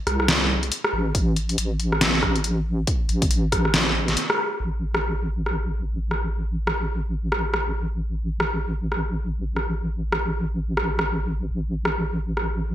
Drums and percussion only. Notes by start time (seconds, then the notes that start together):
0.07 cross-stick, closed hi-hat
0.20 cross-stick
0.28 snare, closed hi-hat
0.63 closed hi-hat
0.72 closed hi-hat
0.84 cross-stick
1.15 kick, closed hi-hat
1.36 closed hi-hat
1.49 closed hi-hat
1.58 closed hi-hat
1.80 closed hi-hat
1.92 cross-stick
2.01 snare, closed hi-hat
2.23 kick, cross-stick
2.36 closed hi-hat
2.44 closed hi-hat
2.87 kick, closed hi-hat
3.09 closed hi-hat
3.22 kick, closed hi-hat
3.31 closed hi-hat
3.52 kick, cross-stick, closed hi-hat
3.65 cross-stick
3.74 snare, closed hi-hat
4.08 snare, closed hi-hat
4.17 closed hi-hat
4.30 cross-stick
4.95 cross-stick
5.46 cross-stick
6.11 cross-stick
6.67 cross-stick
7.32 cross-stick
7.54 cross-stick
8.40 cross-stick
8.92 cross-stick
9.56 cross-stick
10.12 cross-stick
10.77 cross-stick
10.99 cross-stick
11.85 cross-stick
12.37 cross-stick